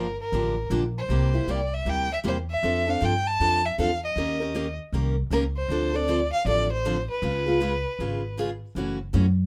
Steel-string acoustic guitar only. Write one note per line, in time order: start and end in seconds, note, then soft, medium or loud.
0.33 0.54 D3 medium
0.33 0.54 F3 medium
0.33 0.55 A#3 medium
0.33 0.55 D4 medium
0.33 0.55 G4 medium
0.71 0.82 D3 medium
0.71 0.82 F3 medium
0.71 0.83 A#3 medium
0.71 0.83 D4 medium
0.71 0.83 G4 medium
1.10 1.31 C3 medium
1.10 1.31 G3 medium
1.10 1.31 A#3 medium
1.10 1.31 E4 medium
1.10 1.32 G4 medium
1.34 1.47 A#3 soft
1.34 1.48 E4 soft
1.34 1.47 G4 soft
1.48 1.59 C3 medium
1.48 1.59 G3 medium
1.48 1.59 A#3 medium
1.48 1.60 E4 medium
1.48 1.60 G4 medium
1.86 2.07 C3 medium
1.86 2.08 G3 medium
1.86 2.08 A#3 medium
1.86 2.08 E4 medium
1.86 2.08 G4 medium
2.23 2.35 C3 medium
2.23 2.36 G3 medium
2.23 2.36 A#3 medium
2.23 2.36 E4 medium
2.23 2.36 G4 medium
2.63 2.84 F3 medium
2.63 2.84 C4 medium
2.63 2.85 D4 medium
2.63 2.85 A4 medium
2.87 3.00 C4 soft
2.87 3.01 D4 soft
2.87 3.01 A4 medium
3.01 3.12 F3 medium
3.01 3.13 C4 medium
3.01 3.13 D4 medium
3.01 3.13 A4 medium
3.40 3.61 F3 medium
3.40 3.61 C4 medium
3.40 3.62 D4 medium
3.40 3.62 A4 medium
3.78 3.89 F3 medium
3.78 3.90 C4 medium
3.78 3.90 D4 medium
3.78 3.90 A4 medium
4.17 4.38 D#3 medium
4.17 4.38 A#3 medium
4.17 4.38 C#4 medium
4.17 4.38 G4 medium
4.17 4.38 A#4 medium
4.40 4.54 C#4 soft
4.40 4.54 G4 medium
4.40 4.54 A#4 medium
4.54 4.66 D#3 medium
4.54 4.66 A#3 medium
4.54 4.66 C#4 medium
4.54 4.66 G4 medium
4.54 4.66 A#4 medium
4.93 5.14 D#3 medium
4.93 5.15 A#3 medium
4.93 5.15 C#4 medium
4.93 5.15 G4 medium
4.93 5.15 A#4 medium
5.31 5.42 D#3 medium
5.31 5.43 A#3 medium
5.31 5.43 C#4 medium
5.31 5.43 G4 medium
5.31 5.43 A#4 loud
5.70 5.91 D3 medium
5.70 5.91 F3 medium
5.70 5.91 C4 medium
5.70 5.92 D4 medium
5.70 5.92 A4 medium
5.93 6.08 C4 soft
5.93 6.08 D4 soft
5.93 6.07 A4 soft
6.08 6.19 D3 medium
6.08 6.19 F3 medium
6.08 6.19 C4 medium
6.08 6.20 D4 medium
6.08 6.20 A4 medium
6.46 6.67 D3 medium
6.46 6.68 F3 medium
6.46 6.68 C4 medium
6.46 6.68 D4 medium
6.46 6.68 A4 medium
6.85 6.96 D3 medium
6.85 6.96 F3 medium
6.85 6.96 C4 medium
6.85 6.96 D4 medium
6.85 6.96 A4 medium
7.22 7.44 C#3 medium
7.22 7.44 G#3 medium
7.22 7.44 B3 medium
7.22 7.44 F4 medium
7.22 7.44 G#4 medium
7.46 7.60 B3 soft
7.46 7.60 F4 soft
7.46 7.60 G#4 soft
7.60 7.72 C#3 medium
7.60 7.72 G#3 medium
7.60 7.72 B3 medium
7.60 7.72 F4 medium
7.60 7.73 G#4 medium
8.00 8.21 C#3 medium
8.00 8.21 G#3 medium
8.00 8.21 B3 medium
8.00 8.21 F4 medium
8.00 8.21 G#4 medium
8.37 8.49 C#3 medium
8.37 8.49 G#3 medium
8.37 8.49 B3 medium
8.37 8.49 F4 medium
8.37 8.49 G#4 medium
8.76 8.97 C#3 medium
8.76 8.97 E3 medium
8.76 8.97 A3 medium
8.76 8.98 C#4 medium
8.76 8.98 F#4 medium
9.13 9.25 C#3 medium
9.13 9.25 E3 medium
9.13 9.25 A3 medium
9.13 9.25 C#4 medium
9.13 9.25 F#4 medium